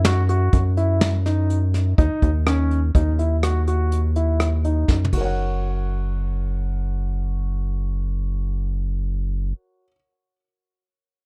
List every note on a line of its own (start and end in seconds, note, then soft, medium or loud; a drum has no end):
0.00 0.49 F#2 loud
0.05 0.20 F#4 medium
0.05 snare medium
0.05 closed hi-hat medium
0.29 0.60 F#4 medium
0.29 closed hi-hat medium
0.53 1.94 F#2 medium
0.53 kick medium
0.53 closed hi-hat medium
0.77 1.08 E4 medium
0.77 closed hi-hat medium
1.01 snare medium
1.01 closed hi-hat medium
1.26 1.57 D#4 medium
1.26 snare soft
1.26 closed hi-hat medium
1.50 closed hi-hat medium
1.74 snare soft
1.74 closed hi-hat medium
1.98 2.09 D#2 medium
1.98 2.29 D#4 medium
1.98 kick medium
1.98 closed hi-hat medium
2.22 2.91 D#2 medium
2.22 kick medium
2.22 closed hi-hat medium
2.47 2.77 C#4 medium
2.47 cross-stick medium
2.47 closed hi-hat medium
2.71 closed hi-hat soft
2.95 4.85 D#2 medium
2.95 3.10 D#4 medium
2.95 kick medium
2.95 closed hi-hat medium
3.19 3.34 E4 medium
3.19 closed hi-hat soft
3.43 3.59 F#4 medium
3.43 cross-stick medium
3.43 closed hi-hat medium
3.67 3.99 F#4 medium
3.67 closed hi-hat soft
3.92 closed hi-hat medium
4.16 4.47 E4 medium
4.16 closed hi-hat soft
4.40 cross-stick medium
4.40 closed hi-hat medium
4.64 4.96 D#4 medium
4.64 closed hi-hat soft
4.88 5.11 F#2 medium
4.88 kick medium
4.88 snare soft
5.05 mid tom soft
5.13 9.53 F#1 medium
5.13 9.82 F#4 soft
5.13 kick soft
5.13 ride medium
5.17 9.86 A#4 medium
5.21 9.90 C#5 soft
5.21 9.94 F#5 soft